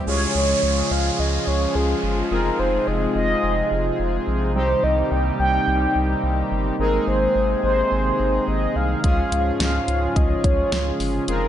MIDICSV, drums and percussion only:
0, 0, Header, 1, 2, 480
1, 0, Start_track
1, 0, Tempo, 560748
1, 58, Time_signature, 4, 2, 24, 8
1, 9829, End_track
2, 0, Start_track
2, 0, Title_t, "Drums"
2, 7738, Note_on_c, 9, 36, 97
2, 7738, Note_on_c, 9, 42, 67
2, 7823, Note_off_c, 9, 42, 0
2, 7824, Note_off_c, 9, 36, 0
2, 7980, Note_on_c, 9, 42, 81
2, 8066, Note_off_c, 9, 42, 0
2, 8219, Note_on_c, 9, 38, 116
2, 8219, Note_on_c, 9, 42, 75
2, 8304, Note_off_c, 9, 38, 0
2, 8305, Note_off_c, 9, 42, 0
2, 8459, Note_on_c, 9, 42, 76
2, 8544, Note_off_c, 9, 42, 0
2, 8698, Note_on_c, 9, 36, 92
2, 8701, Note_on_c, 9, 42, 85
2, 8784, Note_off_c, 9, 36, 0
2, 8786, Note_off_c, 9, 42, 0
2, 8938, Note_on_c, 9, 36, 100
2, 8939, Note_on_c, 9, 42, 76
2, 9023, Note_off_c, 9, 36, 0
2, 9024, Note_off_c, 9, 42, 0
2, 9178, Note_on_c, 9, 38, 115
2, 9179, Note_on_c, 9, 42, 73
2, 9264, Note_off_c, 9, 38, 0
2, 9265, Note_off_c, 9, 42, 0
2, 9417, Note_on_c, 9, 46, 71
2, 9503, Note_off_c, 9, 46, 0
2, 9657, Note_on_c, 9, 42, 70
2, 9743, Note_off_c, 9, 42, 0
2, 9829, End_track
0, 0, End_of_file